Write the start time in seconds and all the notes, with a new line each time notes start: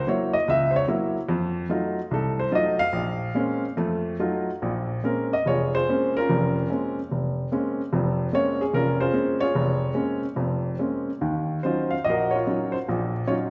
0.07 F#3 A#3 E4 C#5
0.33 D#5
0.48 C#2 E5
0.71 C5
0.76 C#5
0.88 F#3 A#3 E4
1.29 F2
1.69 F#3 A3 D#4 F4
2.11 C2 A4
2.40 C5
2.51 F#3 A3 D#4 F4 D#5
2.79 F5
2.93 A#1
3.34 G#3 A#3 C4 C#4
3.77 F2 A3
4.19 F#3 A3 D#4 F4
4.62 A#1 A#2
5.03 G#3 A#3 C4 C#4 A#4
5.33 D#5
5.46 F1 F4 G#4 C#5
5.75 F4 G#4 C5
5.89 G#3 A#3 C4 C#4
6.17 C#4 F4 A#4
6.29 F1 F2
6.70 G#3 A#3 C4 C#4
7.11 F1
7.52 G#3 A#3 C4 C#4
7.93 F1 F2
8.32 G#3 A#3 C4 C#4 C#5
8.61 G#4
8.74 F1 C#4 F4 A#4
9.01 F4 G#4 C5
9.13 G#3 A#3 C4 C#4
9.40 F4 G#4 C#5
9.55 F1
9.94 G#3 A#3 C4 C#4
10.36 F1 F2
10.79 G#3 A#3 C4 C#4
11.21 D#2 D#3
11.63 F#3 C#4 D#4 F4 C5
11.91 F5
12.04 A#1 D#5
12.09 F#4 A#4
12.31 C#5
12.36 F4 F#4
12.47 F#3 C#4 D#4 F4
12.72 C5
12.88 A#1 A#2
13.27 F#3 C#4 D#4 F4 C#5